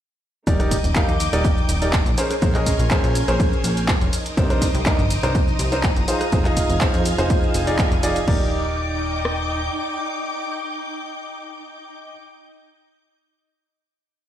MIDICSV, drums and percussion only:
0, 0, Header, 1, 2, 480
1, 0, Start_track
1, 0, Key_signature, -3, "major"
1, 0, Tempo, 487805
1, 463, Time_signature, 4, 2, 24, 8
1, 14053, End_track
2, 0, Start_track
2, 0, Title_t, "Drums"
2, 463, Note_on_c, 9, 36, 118
2, 463, Note_on_c, 9, 51, 56
2, 465, Note_on_c, 9, 82, 44
2, 561, Note_off_c, 9, 36, 0
2, 562, Note_off_c, 9, 51, 0
2, 563, Note_off_c, 9, 82, 0
2, 589, Note_on_c, 9, 37, 59
2, 589, Note_on_c, 9, 42, 56
2, 590, Note_on_c, 9, 82, 22
2, 687, Note_off_c, 9, 37, 0
2, 687, Note_off_c, 9, 42, 0
2, 688, Note_off_c, 9, 82, 0
2, 703, Note_on_c, 9, 36, 61
2, 703, Note_on_c, 9, 46, 113
2, 703, Note_on_c, 9, 51, 79
2, 704, Note_on_c, 9, 82, 82
2, 801, Note_off_c, 9, 36, 0
2, 801, Note_off_c, 9, 46, 0
2, 801, Note_off_c, 9, 51, 0
2, 802, Note_off_c, 9, 82, 0
2, 829, Note_on_c, 9, 42, 69
2, 830, Note_on_c, 9, 82, 33
2, 927, Note_off_c, 9, 42, 0
2, 928, Note_off_c, 9, 82, 0
2, 940, Note_on_c, 9, 39, 127
2, 942, Note_on_c, 9, 51, 56
2, 943, Note_on_c, 9, 36, 123
2, 943, Note_on_c, 9, 82, 46
2, 1038, Note_off_c, 9, 39, 0
2, 1040, Note_off_c, 9, 51, 0
2, 1041, Note_off_c, 9, 36, 0
2, 1041, Note_off_c, 9, 82, 0
2, 1068, Note_on_c, 9, 42, 39
2, 1069, Note_on_c, 9, 82, 22
2, 1167, Note_off_c, 9, 42, 0
2, 1168, Note_off_c, 9, 82, 0
2, 1183, Note_on_c, 9, 46, 106
2, 1183, Note_on_c, 9, 51, 76
2, 1184, Note_on_c, 9, 82, 81
2, 1281, Note_off_c, 9, 46, 0
2, 1281, Note_off_c, 9, 51, 0
2, 1282, Note_off_c, 9, 82, 0
2, 1309, Note_on_c, 9, 37, 59
2, 1309, Note_on_c, 9, 42, 72
2, 1310, Note_on_c, 9, 82, 34
2, 1408, Note_off_c, 9, 37, 0
2, 1408, Note_off_c, 9, 42, 0
2, 1409, Note_off_c, 9, 82, 0
2, 1422, Note_on_c, 9, 51, 52
2, 1423, Note_on_c, 9, 36, 119
2, 1423, Note_on_c, 9, 82, 45
2, 1520, Note_off_c, 9, 51, 0
2, 1521, Note_off_c, 9, 36, 0
2, 1521, Note_off_c, 9, 82, 0
2, 1550, Note_on_c, 9, 82, 23
2, 1648, Note_off_c, 9, 82, 0
2, 1662, Note_on_c, 9, 46, 107
2, 1662, Note_on_c, 9, 51, 78
2, 1663, Note_on_c, 9, 82, 82
2, 1760, Note_off_c, 9, 46, 0
2, 1760, Note_off_c, 9, 51, 0
2, 1761, Note_off_c, 9, 82, 0
2, 1788, Note_on_c, 9, 42, 71
2, 1790, Note_on_c, 9, 82, 35
2, 1887, Note_off_c, 9, 42, 0
2, 1888, Note_off_c, 9, 82, 0
2, 1900, Note_on_c, 9, 39, 124
2, 1902, Note_on_c, 9, 51, 55
2, 1903, Note_on_c, 9, 36, 121
2, 1903, Note_on_c, 9, 82, 45
2, 1999, Note_off_c, 9, 39, 0
2, 2000, Note_off_c, 9, 51, 0
2, 2001, Note_off_c, 9, 36, 0
2, 2001, Note_off_c, 9, 82, 0
2, 2029, Note_on_c, 9, 42, 57
2, 2030, Note_on_c, 9, 82, 23
2, 2127, Note_off_c, 9, 42, 0
2, 2128, Note_off_c, 9, 82, 0
2, 2142, Note_on_c, 9, 46, 106
2, 2142, Note_on_c, 9, 51, 73
2, 2143, Note_on_c, 9, 82, 80
2, 2240, Note_off_c, 9, 46, 0
2, 2240, Note_off_c, 9, 51, 0
2, 2241, Note_off_c, 9, 82, 0
2, 2269, Note_on_c, 9, 37, 62
2, 2269, Note_on_c, 9, 42, 69
2, 2269, Note_on_c, 9, 82, 35
2, 2367, Note_off_c, 9, 37, 0
2, 2367, Note_off_c, 9, 42, 0
2, 2368, Note_off_c, 9, 82, 0
2, 2382, Note_on_c, 9, 51, 54
2, 2383, Note_on_c, 9, 36, 121
2, 2383, Note_on_c, 9, 82, 44
2, 2480, Note_off_c, 9, 51, 0
2, 2481, Note_off_c, 9, 36, 0
2, 2481, Note_off_c, 9, 82, 0
2, 2507, Note_on_c, 9, 39, 39
2, 2509, Note_on_c, 9, 37, 64
2, 2509, Note_on_c, 9, 42, 54
2, 2510, Note_on_c, 9, 82, 22
2, 2605, Note_off_c, 9, 39, 0
2, 2607, Note_off_c, 9, 37, 0
2, 2607, Note_off_c, 9, 42, 0
2, 2608, Note_off_c, 9, 82, 0
2, 2622, Note_on_c, 9, 46, 113
2, 2622, Note_on_c, 9, 51, 78
2, 2623, Note_on_c, 9, 36, 67
2, 2623, Note_on_c, 9, 82, 81
2, 2721, Note_off_c, 9, 36, 0
2, 2721, Note_off_c, 9, 46, 0
2, 2721, Note_off_c, 9, 51, 0
2, 2722, Note_off_c, 9, 82, 0
2, 2749, Note_on_c, 9, 42, 68
2, 2750, Note_on_c, 9, 82, 33
2, 2848, Note_off_c, 9, 42, 0
2, 2849, Note_off_c, 9, 82, 0
2, 2861, Note_on_c, 9, 39, 126
2, 2863, Note_on_c, 9, 36, 126
2, 2863, Note_on_c, 9, 51, 53
2, 2864, Note_on_c, 9, 82, 45
2, 2959, Note_off_c, 9, 39, 0
2, 2961, Note_off_c, 9, 36, 0
2, 2961, Note_off_c, 9, 51, 0
2, 2962, Note_off_c, 9, 82, 0
2, 2990, Note_on_c, 9, 46, 61
2, 2991, Note_on_c, 9, 82, 21
2, 3089, Note_off_c, 9, 46, 0
2, 3090, Note_off_c, 9, 82, 0
2, 3103, Note_on_c, 9, 46, 110
2, 3103, Note_on_c, 9, 51, 73
2, 3104, Note_on_c, 9, 82, 77
2, 3202, Note_off_c, 9, 46, 0
2, 3202, Note_off_c, 9, 51, 0
2, 3203, Note_off_c, 9, 82, 0
2, 3229, Note_on_c, 9, 37, 60
2, 3229, Note_on_c, 9, 42, 66
2, 3230, Note_on_c, 9, 82, 33
2, 3327, Note_off_c, 9, 37, 0
2, 3327, Note_off_c, 9, 42, 0
2, 3328, Note_off_c, 9, 82, 0
2, 3343, Note_on_c, 9, 36, 122
2, 3343, Note_on_c, 9, 51, 52
2, 3345, Note_on_c, 9, 82, 43
2, 3442, Note_off_c, 9, 36, 0
2, 3442, Note_off_c, 9, 51, 0
2, 3443, Note_off_c, 9, 82, 0
2, 3471, Note_on_c, 9, 82, 22
2, 3569, Note_off_c, 9, 82, 0
2, 3584, Note_on_c, 9, 46, 115
2, 3584, Note_on_c, 9, 51, 78
2, 3585, Note_on_c, 9, 82, 77
2, 3682, Note_off_c, 9, 46, 0
2, 3682, Note_off_c, 9, 51, 0
2, 3683, Note_off_c, 9, 82, 0
2, 3711, Note_on_c, 9, 42, 65
2, 3712, Note_on_c, 9, 82, 33
2, 3809, Note_off_c, 9, 42, 0
2, 3810, Note_off_c, 9, 82, 0
2, 3822, Note_on_c, 9, 39, 127
2, 3823, Note_on_c, 9, 36, 127
2, 3824, Note_on_c, 9, 51, 52
2, 3825, Note_on_c, 9, 82, 43
2, 3921, Note_off_c, 9, 39, 0
2, 3922, Note_off_c, 9, 36, 0
2, 3922, Note_off_c, 9, 51, 0
2, 3923, Note_off_c, 9, 82, 0
2, 3950, Note_on_c, 9, 42, 53
2, 3951, Note_on_c, 9, 82, 21
2, 4048, Note_off_c, 9, 42, 0
2, 4049, Note_off_c, 9, 82, 0
2, 4064, Note_on_c, 9, 46, 113
2, 4064, Note_on_c, 9, 51, 77
2, 4065, Note_on_c, 9, 82, 78
2, 4162, Note_off_c, 9, 46, 0
2, 4162, Note_off_c, 9, 51, 0
2, 4163, Note_off_c, 9, 82, 0
2, 4191, Note_on_c, 9, 42, 72
2, 4192, Note_on_c, 9, 82, 34
2, 4289, Note_off_c, 9, 42, 0
2, 4290, Note_off_c, 9, 82, 0
2, 4303, Note_on_c, 9, 36, 123
2, 4304, Note_on_c, 9, 51, 57
2, 4305, Note_on_c, 9, 82, 43
2, 4402, Note_off_c, 9, 36, 0
2, 4403, Note_off_c, 9, 51, 0
2, 4404, Note_off_c, 9, 82, 0
2, 4430, Note_on_c, 9, 37, 65
2, 4430, Note_on_c, 9, 42, 53
2, 4431, Note_on_c, 9, 82, 22
2, 4529, Note_off_c, 9, 37, 0
2, 4529, Note_off_c, 9, 42, 0
2, 4530, Note_off_c, 9, 82, 0
2, 4543, Note_on_c, 9, 36, 67
2, 4544, Note_on_c, 9, 46, 114
2, 4544, Note_on_c, 9, 51, 80
2, 4545, Note_on_c, 9, 82, 81
2, 4642, Note_off_c, 9, 36, 0
2, 4643, Note_off_c, 9, 46, 0
2, 4643, Note_off_c, 9, 51, 0
2, 4643, Note_off_c, 9, 82, 0
2, 4670, Note_on_c, 9, 42, 67
2, 4671, Note_on_c, 9, 82, 32
2, 4768, Note_off_c, 9, 42, 0
2, 4769, Note_off_c, 9, 82, 0
2, 4781, Note_on_c, 9, 39, 127
2, 4783, Note_on_c, 9, 51, 56
2, 4784, Note_on_c, 9, 36, 124
2, 4784, Note_on_c, 9, 82, 45
2, 4880, Note_off_c, 9, 39, 0
2, 4882, Note_off_c, 9, 36, 0
2, 4882, Note_off_c, 9, 51, 0
2, 4883, Note_off_c, 9, 82, 0
2, 4910, Note_on_c, 9, 42, 34
2, 4911, Note_on_c, 9, 82, 22
2, 5008, Note_off_c, 9, 42, 0
2, 5009, Note_off_c, 9, 82, 0
2, 5023, Note_on_c, 9, 46, 116
2, 5023, Note_on_c, 9, 51, 76
2, 5024, Note_on_c, 9, 82, 74
2, 5122, Note_off_c, 9, 46, 0
2, 5122, Note_off_c, 9, 51, 0
2, 5123, Note_off_c, 9, 82, 0
2, 5150, Note_on_c, 9, 37, 65
2, 5150, Note_on_c, 9, 42, 64
2, 5151, Note_on_c, 9, 82, 32
2, 5248, Note_off_c, 9, 37, 0
2, 5248, Note_off_c, 9, 42, 0
2, 5249, Note_off_c, 9, 82, 0
2, 5264, Note_on_c, 9, 36, 126
2, 5264, Note_on_c, 9, 51, 55
2, 5264, Note_on_c, 9, 82, 42
2, 5362, Note_off_c, 9, 36, 0
2, 5362, Note_off_c, 9, 51, 0
2, 5363, Note_off_c, 9, 82, 0
2, 5390, Note_on_c, 9, 82, 21
2, 5489, Note_off_c, 9, 82, 0
2, 5503, Note_on_c, 9, 46, 114
2, 5503, Note_on_c, 9, 51, 78
2, 5504, Note_on_c, 9, 82, 78
2, 5601, Note_off_c, 9, 46, 0
2, 5601, Note_off_c, 9, 51, 0
2, 5602, Note_off_c, 9, 82, 0
2, 5629, Note_on_c, 9, 42, 66
2, 5630, Note_on_c, 9, 82, 33
2, 5728, Note_off_c, 9, 42, 0
2, 5729, Note_off_c, 9, 82, 0
2, 5741, Note_on_c, 9, 39, 122
2, 5742, Note_on_c, 9, 51, 56
2, 5743, Note_on_c, 9, 82, 43
2, 5744, Note_on_c, 9, 36, 127
2, 5839, Note_off_c, 9, 39, 0
2, 5841, Note_off_c, 9, 51, 0
2, 5842, Note_off_c, 9, 36, 0
2, 5842, Note_off_c, 9, 82, 0
2, 5869, Note_on_c, 9, 42, 52
2, 5870, Note_on_c, 9, 82, 22
2, 5967, Note_off_c, 9, 42, 0
2, 5968, Note_off_c, 9, 82, 0
2, 5982, Note_on_c, 9, 46, 113
2, 5982, Note_on_c, 9, 51, 80
2, 5984, Note_on_c, 9, 82, 77
2, 6081, Note_off_c, 9, 46, 0
2, 6081, Note_off_c, 9, 51, 0
2, 6082, Note_off_c, 9, 82, 0
2, 6109, Note_on_c, 9, 37, 67
2, 6109, Note_on_c, 9, 42, 67
2, 6110, Note_on_c, 9, 82, 34
2, 6207, Note_off_c, 9, 37, 0
2, 6207, Note_off_c, 9, 42, 0
2, 6208, Note_off_c, 9, 82, 0
2, 6222, Note_on_c, 9, 51, 59
2, 6223, Note_on_c, 9, 82, 45
2, 6224, Note_on_c, 9, 36, 124
2, 6320, Note_off_c, 9, 51, 0
2, 6322, Note_off_c, 9, 36, 0
2, 6322, Note_off_c, 9, 82, 0
2, 6347, Note_on_c, 9, 39, 37
2, 6349, Note_on_c, 9, 37, 64
2, 6349, Note_on_c, 9, 42, 51
2, 6350, Note_on_c, 9, 82, 23
2, 6446, Note_off_c, 9, 39, 0
2, 6448, Note_off_c, 9, 37, 0
2, 6448, Note_off_c, 9, 42, 0
2, 6449, Note_off_c, 9, 82, 0
2, 6462, Note_on_c, 9, 46, 111
2, 6462, Note_on_c, 9, 51, 85
2, 6463, Note_on_c, 9, 36, 65
2, 6463, Note_on_c, 9, 82, 78
2, 6561, Note_off_c, 9, 46, 0
2, 6561, Note_off_c, 9, 51, 0
2, 6562, Note_off_c, 9, 36, 0
2, 6562, Note_off_c, 9, 82, 0
2, 6589, Note_on_c, 9, 42, 63
2, 6590, Note_on_c, 9, 82, 32
2, 6687, Note_off_c, 9, 42, 0
2, 6688, Note_off_c, 9, 82, 0
2, 6700, Note_on_c, 9, 39, 119
2, 6702, Note_on_c, 9, 51, 58
2, 6703, Note_on_c, 9, 36, 123
2, 6703, Note_on_c, 9, 82, 44
2, 6799, Note_off_c, 9, 39, 0
2, 6800, Note_off_c, 9, 51, 0
2, 6802, Note_off_c, 9, 36, 0
2, 6802, Note_off_c, 9, 82, 0
2, 6829, Note_on_c, 9, 46, 62
2, 6830, Note_on_c, 9, 82, 22
2, 6927, Note_off_c, 9, 46, 0
2, 6928, Note_off_c, 9, 82, 0
2, 6942, Note_on_c, 9, 46, 110
2, 6942, Note_on_c, 9, 51, 83
2, 6943, Note_on_c, 9, 82, 78
2, 7041, Note_off_c, 9, 46, 0
2, 7041, Note_off_c, 9, 51, 0
2, 7042, Note_off_c, 9, 82, 0
2, 7069, Note_on_c, 9, 37, 68
2, 7069, Note_on_c, 9, 42, 64
2, 7070, Note_on_c, 9, 82, 33
2, 7168, Note_off_c, 9, 37, 0
2, 7168, Note_off_c, 9, 42, 0
2, 7169, Note_off_c, 9, 82, 0
2, 7183, Note_on_c, 9, 36, 123
2, 7183, Note_on_c, 9, 51, 58
2, 7184, Note_on_c, 9, 82, 44
2, 7282, Note_off_c, 9, 36, 0
2, 7282, Note_off_c, 9, 51, 0
2, 7283, Note_off_c, 9, 82, 0
2, 7310, Note_on_c, 9, 82, 22
2, 7408, Note_off_c, 9, 82, 0
2, 7423, Note_on_c, 9, 46, 114
2, 7423, Note_on_c, 9, 51, 85
2, 7424, Note_on_c, 9, 82, 77
2, 7521, Note_off_c, 9, 46, 0
2, 7521, Note_off_c, 9, 51, 0
2, 7523, Note_off_c, 9, 82, 0
2, 7550, Note_on_c, 9, 42, 65
2, 7551, Note_on_c, 9, 82, 33
2, 7648, Note_off_c, 9, 42, 0
2, 7649, Note_off_c, 9, 82, 0
2, 7662, Note_on_c, 9, 39, 122
2, 7663, Note_on_c, 9, 51, 58
2, 7664, Note_on_c, 9, 36, 127
2, 7665, Note_on_c, 9, 82, 45
2, 7760, Note_off_c, 9, 39, 0
2, 7762, Note_off_c, 9, 36, 0
2, 7762, Note_off_c, 9, 51, 0
2, 7763, Note_off_c, 9, 82, 0
2, 7790, Note_on_c, 9, 42, 52
2, 7791, Note_on_c, 9, 82, 23
2, 7888, Note_off_c, 9, 42, 0
2, 7889, Note_off_c, 9, 82, 0
2, 7903, Note_on_c, 9, 46, 115
2, 7903, Note_on_c, 9, 51, 81
2, 7904, Note_on_c, 9, 82, 75
2, 8002, Note_off_c, 9, 46, 0
2, 8002, Note_off_c, 9, 51, 0
2, 8003, Note_off_c, 9, 82, 0
2, 8029, Note_on_c, 9, 42, 66
2, 8031, Note_on_c, 9, 82, 34
2, 8128, Note_off_c, 9, 42, 0
2, 8129, Note_off_c, 9, 82, 0
2, 8144, Note_on_c, 9, 36, 113
2, 8144, Note_on_c, 9, 49, 89
2, 8242, Note_off_c, 9, 36, 0
2, 8242, Note_off_c, 9, 49, 0
2, 9103, Note_on_c, 9, 37, 63
2, 9201, Note_off_c, 9, 37, 0
2, 14053, End_track
0, 0, End_of_file